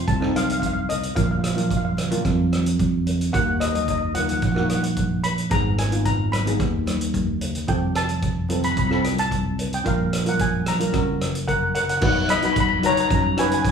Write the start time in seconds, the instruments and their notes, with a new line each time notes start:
0.08 fingered electric bass C2, steel pan A5, kick, closed hi-hat
0.20 steel pan A3 C4 D#4, cross-stick
0.35 steel pan F5, cross-stick, closed hi-hat, high conga
0.44 steel pan F5
0.50 steel pan F5, closed hi-hat
0.60 steel pan F5, kick, closed hi-hat, high conga
0.66 steel pan F5
0.73 steel pan F5
0.89 steel pan D#5, closed hi-hat, low conga
1.03 closed hi-hat
1.15 fingered electric bass A#1, steel pan A#3 D4 F4 F5, kick, closed hi-hat
1.24 steel pan F5
1.29 steel pan F5, low conga
1.39 steel pan F5
1.44 steel pan F5, cross-stick, closed hi-hat
1.54 steel pan A#3 D4 F4 F5, closed hi-hat, high conga
1.62 steel pan F5
1.70 steel pan F5, kick, closed hi-hat
1.77 steel pan F5
1.85 steel pan F5
1.97 cross-stick, closed hi-hat, high conga, low conga
2.10 steel pan A#3 D4 F4, closed hi-hat, high conga
2.25 fingered electric bass F2, kick, cross-stick, closed hi-hat
2.52 cross-stick, closed hi-hat, high conga
2.66 closed hi-hat
2.79 kick, closed hi-hat, high conga
3.06 closed hi-hat, low conga
3.21 closed hi-hat
3.32 fingered electric bass D#2, steel pan A#3 D#4 F#4 F#5, kick, closed hi-hat
3.60 steel pan D#5, cross-stick, closed hi-hat
3.68 steel pan D#5
3.74 steel pan D#5, closed hi-hat, high conga
3.83 steel pan D#5
3.88 steel pan D#5, kick, closed hi-hat
3.98 steel pan D#5
4.14 steel pan A#3 D#4 F4 F#5, closed hi-hat, high conga, low conga
4.22 steel pan F#5
4.28 steel pan F#5, closed hi-hat, high conga
4.37 steel pan F#5
4.42 fingered electric bass A#1, steel pan F#5, kick, closed hi-hat
4.52 steel pan A#3 D#4 F#5
4.56 steel pan F#4 F#5, cross-stick
4.67 steel pan F#5, cross-stick, closed hi-hat, high conga
4.75 steel pan F#5
4.83 steel pan F#5, closed hi-hat
4.96 kick, closed hi-hat, high conga
5.24 steel pan B5, closed hi-hat
5.38 closed hi-hat
5.50 fingered electric bass G#1, steel pan B3 D#4 G#4 A#5, kick, closed hi-hat
5.78 steel pan G#5, cross-stick, closed hi-hat
5.91 steel pan B3 D#4 F4, closed hi-hat
6.05 steel pan A#5, kick, closed hi-hat
6.32 steel pan B5, cross-stick, closed hi-hat, high conga, low conga
6.46 steel pan B3 D#4 G#4, closed hi-hat, high conga
6.60 fingered electric bass D#2, kick, cross-stick, closed hi-hat
6.86 cross-stick, closed hi-hat, high conga
7.01 closed hi-hat
7.14 kick, closed hi-hat, high conga
7.41 closed hi-hat, low conga
7.55 closed hi-hat
7.67 fingered electric bass F1, steel pan C4 F4 A4 G5, kick, closed hi-hat
7.95 steel pan A5, cross-stick, closed hi-hat
8.09 closed hi-hat, high conga
8.22 kick, closed hi-hat
8.48 steel pan C4 F4 A4, closed hi-hat, high conga, low conga
8.63 steel pan B5, closed hi-hat, high conga
8.72 steel pan B5
8.77 fingered electric bass C2, steel pan B5, kick, closed hi-hat
8.87 steel pan C4 F4 A4 B5, cross-stick
8.94 steel pan B5
9.02 steel pan B5, cross-stick, closed hi-hat, high conga
9.18 steel pan A5, closed hi-hat
9.31 kick, closed hi-hat, high conga
9.58 closed hi-hat, low conga
9.73 steel pan G5, closed hi-hat
9.84 fingered electric bass A#1, steel pan D4 F4 A#4 F5, kick, closed hi-hat
9.99 low conga
10.13 cross-stick, closed hi-hat
10.25 steel pan D4 F4 A#4 F#5, closed hi-hat, high conga
10.39 steel pan G#5, kick, closed hi-hat
10.66 steel pan A#5, cross-stick, closed hi-hat, high conga, low conga
10.79 steel pan D4 F4 A#4, closed hi-hat, high conga
10.92 fingered electric bass F#1, steel pan C#4 F#4 A#4, kick, cross-stick, closed hi-hat
11.21 cross-stick, closed hi-hat, high conga
11.35 closed hi-hat
11.48 steel pan A#4 F#5, kick, closed hi-hat, high conga
11.75 steel pan A#4 F#5, closed hi-hat, low conga
11.82 steel pan F#5
11.89 steel pan F#5, closed hi-hat
11.97 steel pan D#4 F#5
12.02 fingered electric bass B1, steel pan F#4 B4 F#5, kick, crash
12.12 steel pan F#5
12.29 steel pan D#5 B5, cross-stick, closed hi-hat, high conga
12.37 steel pan B5
12.42 steel pan D#4 F#4 B4 B5, closed hi-hat
12.53 steel pan B5, kick, closed hi-hat
12.60 steel pan B5
12.69 steel pan B5, high conga
12.83 steel pan D#4 F#4 B4 C#5 A#5, closed hi-hat, low conga
12.93 steel pan A#5
12.97 steel pan A#5, closed hi-hat
13.08 fingered electric bass F#2, steel pan A#5, kick, closed hi-hat
13.15 steel pan A#5
13.22 steel pan A#5
13.37 steel pan D#4 F#4 B4 C#5 G#5, cross-stick, closed hi-hat
13.46 steel pan G#5
13.51 steel pan G#5, closed hi-hat, low conga
13.62 steel pan G#5, kick, closed hi-hat